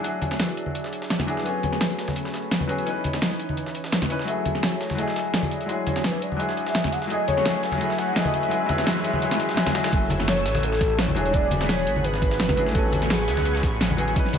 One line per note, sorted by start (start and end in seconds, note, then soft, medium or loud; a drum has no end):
0.00 2.83 F#3 medium
0.00 1.24 F#3 medium
0.00 1.44 D4 medium
0.00 1.25 D4 medium
0.00 1.43 E4 medium
0.00 2.83 G#4 medium
0.04 1.26 E4 medium
0.04 1.27 G#4 medium
0.04 0.41 C#5 loud
0.04 closed hi-hat medium
0.22 closed hi-hat medium
0.22 high conga medium
0.31 snare medium
0.31 snare soft
0.40 0.74 B4 medium
0.40 snare loud
0.40 closed hi-hat medium
0.57 closed hi-hat medium
0.66 high conga medium
0.75 1.03 D5 loud
0.75 closed hi-hat medium
0.84 snare soft
0.84 closed hi-hat soft
0.93 closed hi-hat medium
1.02 1.30 C#5 loud
1.02 snare soft
1.10 snare loud
1.10 closed hi-hat medium
1.19 snare medium
1.19 high conga medium
1.26 1.41 F#3 medium
1.26 1.43 D4 medium
1.26 1.44 E4 medium
1.26 1.44 G#4 medium
1.26 1.47 B4 medium
1.26 closed hi-hat medium
1.37 snare soft
1.43 2.66 F#3 medium
1.43 2.85 A3 medium
1.43 2.67 B3 medium
1.43 4.25 C#4 medium
1.43 1.65 A4 medium
1.43 4.25 B4 medium
1.43 closed hi-hat medium
1.47 2.68 C#4 medium
1.47 2.69 G#4 medium
1.63 2.34 G#4 medium
1.63 closed hi-hat medium
1.63 high conga medium
1.73 snare soft
1.81 snare loud
1.81 closed hi-hat medium
1.99 snare soft
1.99 closed hi-hat medium
2.08 snare soft
2.08 high conga medium
2.16 closed hi-hat medium
2.25 snare soft
2.25 closed hi-hat soft
2.34 snare soft
2.34 closed hi-hat medium
2.51 snare loud
2.51 closed hi-hat medium
2.60 high conga medium
2.67 2.84 F#3 medium
2.67 2.84 B3 medium
2.67 2.84 C#4 medium
2.67 2.85 G#4 medium
2.67 closed hi-hat medium
2.78 closed hi-hat soft
2.84 4.07 E3 medium
2.84 4.27 E3 medium
2.84 4.08 C#4 medium
2.84 4.27 D#4 medium
2.84 closed hi-hat medium
2.88 4.09 D#4 medium
2.88 4.10 B4 medium
3.04 closed hi-hat medium
3.04 high conga medium
3.13 snare medium
3.13 snare soft
3.13 closed hi-hat soft
3.22 snare loud
3.22 closed hi-hat medium
3.31 snare soft
3.39 closed hi-hat medium
3.49 closed hi-hat soft
3.49 high conga medium
3.57 closed hi-hat medium
3.66 snare soft
3.66 closed hi-hat soft
3.75 closed hi-hat medium
3.84 snare medium
3.92 snare loud
3.92 closed hi-hat medium
4.02 snare medium
4.02 high conga medium
4.09 4.25 E3 medium
4.09 4.26 C#4 medium
4.09 4.26 D#4 medium
4.09 4.27 B4 medium
4.09 closed hi-hat medium
4.19 snare soft
4.25 4.94 F#3 medium
4.25 8.47 F#3 medium
4.25 4.96 A3 medium
4.25 5.50 A3 medium
4.25 7.07 E4 medium
4.25 8.47 G#4 medium
4.25 4.65 E5 loud
4.25 closed hi-hat medium
4.29 4.98 E4 medium
4.29 4.99 G#4 medium
4.45 closed hi-hat medium
4.45 high conga medium
4.55 snare soft
4.63 5.00 C#5 medium
4.63 snare loud
4.63 closed hi-hat medium
4.81 snare soft
4.81 closed hi-hat medium
4.90 snare soft
4.90 high conga medium
4.95 5.64 F#3 medium
4.95 5.67 A3 medium
4.95 5.33 D#5 loud
4.95 closed hi-hat medium
4.99 5.68 E4 medium
4.99 5.69 G#4 medium
5.08 snare soft
5.08 closed hi-hat soft
5.16 snare soft
5.16 closed hi-hat medium
5.34 5.71 D5 loud
5.34 snare loud
5.34 closed hi-hat medium
5.43 high conga medium
5.51 7.09 D4 medium
5.51 closed hi-hat medium
5.61 closed hi-hat soft
5.66 6.35 F#3 medium
5.66 6.37 G#3 medium
5.66 6.06 C#5 loud
5.66 closed hi-hat medium
5.70 6.39 E4 medium
5.70 6.40 G#4 medium
5.87 closed hi-hat medium
5.87 high conga medium
5.96 snare medium
5.96 snare soft
6.04 6.23 B4 medium
6.04 snare loud
6.04 closed hi-hat medium
6.22 6.41 D5 loud
6.22 closed hi-hat medium
6.32 high conga medium
6.37 7.06 F#3 medium
6.37 7.08 G#3 medium
6.37 6.94 E5 loud
6.37 closed hi-hat medium
6.41 7.10 E4 medium
6.41 7.11 G#4 medium
6.49 snare soft
6.49 closed hi-hat soft
6.57 closed hi-hat medium
6.67 snare medium
6.75 snare loud
6.75 closed hi-hat medium
6.84 snare medium
6.84 high conga medium
6.92 7.10 F#5 loud
6.92 closed hi-hat medium
7.02 snare soft
7.07 7.41 F#3 medium
7.07 7.43 A3 medium
7.07 8.50 A3 medium
7.07 8.50 C#4 medium
7.07 9.90 B4 medium
7.07 7.27 D#5 loud
7.07 closed hi-hat medium
7.07 closed hi-hat loud
7.11 7.45 E4 medium
7.11 7.46 G#4 medium
7.28 7.65 C#5 loud
7.28 closed hi-hat medium
7.28 high conga medium
7.37 snare soft
7.42 7.76 F#3 medium
7.42 7.78 A3 medium
7.42 snare loud
7.42 closed hi-hat medium
7.47 7.80 E4 medium
7.47 7.81 G#4 medium
7.63 7.98 E5 loud
7.63 snare soft
7.63 closed hi-hat medium
7.72 snare soft
7.72 high conga medium
7.78 8.12 F#3 medium
7.78 8.14 A3 medium
7.78 closed hi-hat medium
7.78 closed hi-hat loud
7.82 8.15 E4 medium
7.82 8.16 G#4 medium
7.90 snare soft
7.90 closed hi-hat soft
7.99 8.15 F#5 loud
7.99 snare soft
7.99 closed hi-hat medium
8.13 8.47 F#3 medium
8.13 8.50 A3 medium
8.13 8.36 D#5 loud
8.13 snare loud
8.13 closed hi-hat medium
8.17 8.51 E4 medium
8.17 8.52 G#4 medium
8.25 high conga medium
8.34 9.57 E5 loud
8.34 closed hi-hat medium
8.43 closed hi-hat soft
8.48 9.91 D#3 medium
8.48 9.91 E3 medium
8.48 8.64 F#3 medium
8.48 8.66 G#3 medium
8.48 9.91 C#4 medium
8.48 closed hi-hat medium
8.48 closed hi-hat loud
8.52 8.68 E4 medium
8.52 8.69 G#4 medium
8.66 8.82 F#3 medium
8.66 8.84 G#3 medium
8.66 closed hi-hat medium
8.66 high conga loud
8.70 8.86 E4 medium
8.70 8.87 G#4 medium
8.78 snare medium
8.78 snare soft
8.78 closed hi-hat soft
8.84 9.00 F#3 medium
8.84 9.02 G#3 medium
8.84 snare loud
8.84 closed hi-hat medium
8.84 closed hi-hat loud
8.88 9.04 E4 medium
8.88 9.05 G#4 medium
8.96 snare soft
9.01 9.17 F#3 medium
9.01 9.19 G#3 medium
9.01 closed hi-hat medium
9.05 9.21 E4 medium
9.05 9.22 G#4 loud
9.13 closed hi-hat soft
9.13 high conga medium
9.19 9.35 F#3 medium
9.19 9.37 G#3 medium
9.19 closed hi-hat medium
9.23 9.39 E4 medium
9.23 9.40 G#4 loud
9.31 snare soft
9.31 snare medium
9.31 closed hi-hat soft
9.36 9.53 F#3 medium
9.36 9.55 G#3 medium
9.36 closed hi-hat medium
9.40 9.56 E4 medium
9.40 9.57 G#4 medium
9.49 snare medium
9.54 9.71 F#3 medium
9.54 9.73 G#3 medium
9.54 snare loud
9.54 closed hi-hat medium
9.54 closed hi-hat loud
9.58 9.74 E4 medium
9.58 9.75 G#4 loud
9.66 snare loud
9.66 snare medium
9.66 closed hi-hat medium
9.66 high conga medium
9.72 9.88 F#3 medium
9.72 9.91 G#3 medium
9.72 snare loud
9.72 closed hi-hat medium
9.76 9.92 E4 medium
9.76 9.93 G#4 loud
9.84 snare loud
9.84 closed hi-hat medium
9.90 10.47 F#1 loud
9.90 11.13 F#3 medium
9.90 11.14 A3 medium
9.90 11.15 A3 medium
9.90 11.15 G#5 medium
9.90 11.15 E6 medium
9.90 kick loud
9.90 closed hi-hat medium
9.90 crash loud
9.94 11.15 E4 medium
9.94 11.16 G#5 medium
10.10 closed hi-hat medium
10.10 tambourine medium
10.10 high conga loud
10.20 snare soft
10.28 10.65 C#5 loud
10.28 snare loud
10.28 closed hi-hat medium
10.28 closed hi-hat loud
10.46 11.18 A1 loud
10.46 snare soft
10.46 closed hi-hat medium
10.46 tambourine medium
10.55 snare soft
10.55 high conga medium
10.63 11.00 A4 loud
10.63 closed hi-hat loud
10.63 closed hi-hat medium
10.73 snare soft
10.73 closed hi-hat soft
10.81 kick loud
10.81 snare soft
10.81 closed hi-hat medium
10.81 tambourine medium
10.99 11.36 C#5 loud
10.99 snare loud
10.99 closed hi-hat loud
10.99 closed hi-hat medium
11.08 tambourine soft
11.08 high conga medium
11.15 11.88 E1 loud
11.15 11.29 F#3 medium
11.15 11.31 D4 medium
11.15 11.32 E4 medium
11.15 12.73 G#4 medium
11.15 11.33 G#4 medium
11.15 14.13 F#5 medium
11.15 12.73 B5 medium
11.15 closed hi-hat medium
11.15 tambourine medium
11.26 closed hi-hat soft
11.31 12.54 F#3 medium
11.31 12.55 D4 medium
11.31 11.71 D5 loud
11.31 kick loud
11.31 closed hi-hat medium
11.35 12.56 E4 medium
11.35 12.57 G#4 medium
11.51 closed hi-hat medium
11.51 tambourine medium
11.51 high conga loud
11.61 snare medium
11.61 snare soft
11.69 12.06 C#5 loud
11.69 snare loud
11.69 closed hi-hat medium
11.69 closed hi-hat loud
11.87 12.56 G#1 loud
11.87 closed hi-hat medium
11.87 tambourine medium
11.96 high conga medium
12.04 12.56 B4 loud
12.04 closed hi-hat medium
12.14 snare soft
12.14 closed hi-hat soft
12.22 kick loud
12.22 closed hi-hat medium
12.22 tambourine medium
12.31 snare medium
12.40 snare loud
12.40 closed hi-hat medium
12.49 kick medium
12.49 snare medium
12.49 tambourine soft
12.49 high conga medium
12.56 13.29 A1 medium
12.56 12.70 F#3 medium
12.56 12.73 D4 medium
12.56 12.73 E4 medium
12.56 12.74 G#4 medium
12.56 12.65 B4 medium
12.56 closed hi-hat medium
12.56 tambourine medium
12.67 snare soft
12.72 13.95 F#3 medium
12.72 13.96 B3 medium
12.72 13.12 A4 loud
12.72 14.15 B4 medium
12.72 14.15 G#5 medium
12.72 14.15 C#6 medium
12.72 kick loud
12.72 closed hi-hat medium
12.76 13.97 C#4 medium
12.76 13.98 G#5 medium
12.92 closed hi-hat medium
12.92 tambourine medium
12.92 high conga medium
13.02 snare soft
13.10 13.81 G#4 medium
13.10 snare loud
13.10 closed hi-hat medium
13.28 13.62 C#2 loud
13.28 snare medium
13.28 closed hi-hat medium
13.28 tambourine medium
13.37 snare soft
13.37 high conga medium
13.45 closed hi-hat medium
13.55 snare soft
13.55 closed hi-hat soft
13.63 14.15 A1 loud
13.63 kick loud
13.63 snare soft
13.63 closed hi-hat medium
13.63 tambourine medium
13.81 snare loud
13.81 closed hi-hat medium
13.90 tambourine soft
13.90 high conga loud
13.97 14.13 F#3 medium
13.97 14.14 B3 medium
13.97 14.14 C#4 medium
13.97 14.15 G#4 medium
13.97 closed hi-hat medium
13.97 tambourine medium
14.08 closed hi-hat soft
14.13 14.38 E3 medium
14.13 14.38 C#4 medium
14.13 14.38 B4 medium
14.13 14.38 D#6 medium
14.13 kick loud
14.13 closed hi-hat medium
14.17 14.38 D#4 medium
14.17 14.38 B4 medium
14.25 snare soft
14.33 closed hi-hat medium
14.33 tambourine medium
14.33 high conga loud